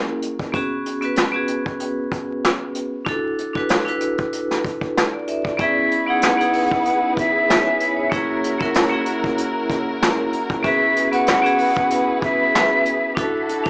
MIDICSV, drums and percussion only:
0, 0, Header, 1, 2, 480
1, 0, Start_track
1, 0, Tempo, 631579
1, 410, Time_signature, 4, 2, 24, 8
1, 10411, End_track
2, 0, Start_track
2, 0, Title_t, "Drums"
2, 168, Note_on_c, 9, 42, 68
2, 244, Note_off_c, 9, 42, 0
2, 299, Note_on_c, 9, 36, 94
2, 375, Note_off_c, 9, 36, 0
2, 406, Note_on_c, 9, 42, 89
2, 409, Note_on_c, 9, 36, 121
2, 482, Note_off_c, 9, 42, 0
2, 485, Note_off_c, 9, 36, 0
2, 652, Note_on_c, 9, 42, 71
2, 728, Note_off_c, 9, 42, 0
2, 773, Note_on_c, 9, 42, 51
2, 849, Note_off_c, 9, 42, 0
2, 881, Note_on_c, 9, 42, 86
2, 892, Note_on_c, 9, 38, 112
2, 957, Note_off_c, 9, 42, 0
2, 968, Note_off_c, 9, 38, 0
2, 1122, Note_on_c, 9, 42, 76
2, 1198, Note_off_c, 9, 42, 0
2, 1262, Note_on_c, 9, 36, 88
2, 1338, Note_off_c, 9, 36, 0
2, 1365, Note_on_c, 9, 42, 93
2, 1441, Note_off_c, 9, 42, 0
2, 1609, Note_on_c, 9, 36, 95
2, 1614, Note_on_c, 9, 42, 77
2, 1685, Note_off_c, 9, 36, 0
2, 1690, Note_off_c, 9, 42, 0
2, 1857, Note_on_c, 9, 42, 96
2, 1859, Note_on_c, 9, 38, 116
2, 1933, Note_off_c, 9, 42, 0
2, 1935, Note_off_c, 9, 38, 0
2, 2087, Note_on_c, 9, 42, 70
2, 2163, Note_off_c, 9, 42, 0
2, 2326, Note_on_c, 9, 42, 87
2, 2329, Note_on_c, 9, 36, 121
2, 2402, Note_off_c, 9, 42, 0
2, 2405, Note_off_c, 9, 36, 0
2, 2572, Note_on_c, 9, 42, 73
2, 2648, Note_off_c, 9, 42, 0
2, 2701, Note_on_c, 9, 36, 90
2, 2777, Note_off_c, 9, 36, 0
2, 2803, Note_on_c, 9, 42, 87
2, 2814, Note_on_c, 9, 38, 114
2, 2879, Note_off_c, 9, 42, 0
2, 2890, Note_off_c, 9, 38, 0
2, 2945, Note_on_c, 9, 42, 53
2, 3021, Note_off_c, 9, 42, 0
2, 3043, Note_on_c, 9, 42, 74
2, 3119, Note_off_c, 9, 42, 0
2, 3174, Note_on_c, 9, 42, 49
2, 3182, Note_on_c, 9, 36, 83
2, 3250, Note_off_c, 9, 42, 0
2, 3258, Note_off_c, 9, 36, 0
2, 3287, Note_on_c, 9, 42, 94
2, 3363, Note_off_c, 9, 42, 0
2, 3427, Note_on_c, 9, 38, 37
2, 3503, Note_off_c, 9, 38, 0
2, 3530, Note_on_c, 9, 36, 97
2, 3537, Note_on_c, 9, 42, 81
2, 3606, Note_off_c, 9, 36, 0
2, 3613, Note_off_c, 9, 42, 0
2, 3658, Note_on_c, 9, 36, 86
2, 3734, Note_off_c, 9, 36, 0
2, 3779, Note_on_c, 9, 42, 99
2, 3781, Note_on_c, 9, 38, 119
2, 3855, Note_off_c, 9, 42, 0
2, 3857, Note_off_c, 9, 38, 0
2, 4009, Note_on_c, 9, 42, 69
2, 4085, Note_off_c, 9, 42, 0
2, 4140, Note_on_c, 9, 36, 99
2, 4216, Note_off_c, 9, 36, 0
2, 4247, Note_on_c, 9, 42, 89
2, 4250, Note_on_c, 9, 36, 120
2, 4323, Note_off_c, 9, 42, 0
2, 4326, Note_off_c, 9, 36, 0
2, 4493, Note_on_c, 9, 42, 71
2, 4569, Note_off_c, 9, 42, 0
2, 4723, Note_on_c, 9, 42, 88
2, 4735, Note_on_c, 9, 38, 122
2, 4799, Note_off_c, 9, 42, 0
2, 4811, Note_off_c, 9, 38, 0
2, 4866, Note_on_c, 9, 42, 56
2, 4942, Note_off_c, 9, 42, 0
2, 4964, Note_on_c, 9, 46, 55
2, 5040, Note_off_c, 9, 46, 0
2, 5103, Note_on_c, 9, 36, 90
2, 5179, Note_off_c, 9, 36, 0
2, 5208, Note_on_c, 9, 42, 97
2, 5284, Note_off_c, 9, 42, 0
2, 5450, Note_on_c, 9, 36, 94
2, 5456, Note_on_c, 9, 42, 78
2, 5526, Note_off_c, 9, 36, 0
2, 5532, Note_off_c, 9, 42, 0
2, 5699, Note_on_c, 9, 42, 103
2, 5701, Note_on_c, 9, 38, 118
2, 5775, Note_off_c, 9, 42, 0
2, 5777, Note_off_c, 9, 38, 0
2, 5929, Note_on_c, 9, 42, 71
2, 6005, Note_off_c, 9, 42, 0
2, 6168, Note_on_c, 9, 42, 90
2, 6170, Note_on_c, 9, 36, 123
2, 6244, Note_off_c, 9, 42, 0
2, 6246, Note_off_c, 9, 36, 0
2, 6413, Note_on_c, 9, 42, 74
2, 6489, Note_off_c, 9, 42, 0
2, 6535, Note_on_c, 9, 42, 52
2, 6541, Note_on_c, 9, 36, 96
2, 6611, Note_off_c, 9, 42, 0
2, 6617, Note_off_c, 9, 36, 0
2, 6643, Note_on_c, 9, 42, 88
2, 6655, Note_on_c, 9, 38, 123
2, 6719, Note_off_c, 9, 42, 0
2, 6731, Note_off_c, 9, 38, 0
2, 6884, Note_on_c, 9, 42, 79
2, 6960, Note_off_c, 9, 42, 0
2, 7022, Note_on_c, 9, 36, 90
2, 7098, Note_off_c, 9, 36, 0
2, 7127, Note_on_c, 9, 42, 98
2, 7203, Note_off_c, 9, 42, 0
2, 7369, Note_on_c, 9, 36, 99
2, 7374, Note_on_c, 9, 42, 82
2, 7445, Note_off_c, 9, 36, 0
2, 7450, Note_off_c, 9, 42, 0
2, 7617, Note_on_c, 9, 42, 99
2, 7619, Note_on_c, 9, 38, 120
2, 7693, Note_off_c, 9, 42, 0
2, 7695, Note_off_c, 9, 38, 0
2, 7847, Note_on_c, 9, 42, 70
2, 7923, Note_off_c, 9, 42, 0
2, 7979, Note_on_c, 9, 36, 96
2, 8055, Note_off_c, 9, 36, 0
2, 8087, Note_on_c, 9, 42, 86
2, 8089, Note_on_c, 9, 36, 120
2, 8163, Note_off_c, 9, 42, 0
2, 8165, Note_off_c, 9, 36, 0
2, 8332, Note_on_c, 9, 42, 72
2, 8408, Note_off_c, 9, 42, 0
2, 8453, Note_on_c, 9, 42, 54
2, 8529, Note_off_c, 9, 42, 0
2, 8561, Note_on_c, 9, 42, 89
2, 8573, Note_on_c, 9, 38, 123
2, 8637, Note_off_c, 9, 42, 0
2, 8649, Note_off_c, 9, 38, 0
2, 8705, Note_on_c, 9, 42, 55
2, 8781, Note_off_c, 9, 42, 0
2, 8804, Note_on_c, 9, 46, 53
2, 8880, Note_off_c, 9, 46, 0
2, 8934, Note_on_c, 9, 42, 50
2, 8942, Note_on_c, 9, 36, 88
2, 9010, Note_off_c, 9, 42, 0
2, 9018, Note_off_c, 9, 36, 0
2, 9046, Note_on_c, 9, 42, 95
2, 9122, Note_off_c, 9, 42, 0
2, 9289, Note_on_c, 9, 36, 100
2, 9295, Note_on_c, 9, 42, 80
2, 9365, Note_off_c, 9, 36, 0
2, 9371, Note_off_c, 9, 42, 0
2, 9538, Note_on_c, 9, 42, 100
2, 9540, Note_on_c, 9, 38, 120
2, 9614, Note_off_c, 9, 42, 0
2, 9616, Note_off_c, 9, 38, 0
2, 9768, Note_on_c, 9, 42, 70
2, 9844, Note_off_c, 9, 42, 0
2, 10007, Note_on_c, 9, 42, 90
2, 10009, Note_on_c, 9, 36, 122
2, 10083, Note_off_c, 9, 42, 0
2, 10085, Note_off_c, 9, 36, 0
2, 10252, Note_on_c, 9, 42, 70
2, 10328, Note_off_c, 9, 42, 0
2, 10374, Note_on_c, 9, 42, 54
2, 10381, Note_on_c, 9, 36, 92
2, 10411, Note_off_c, 9, 36, 0
2, 10411, Note_off_c, 9, 42, 0
2, 10411, End_track
0, 0, End_of_file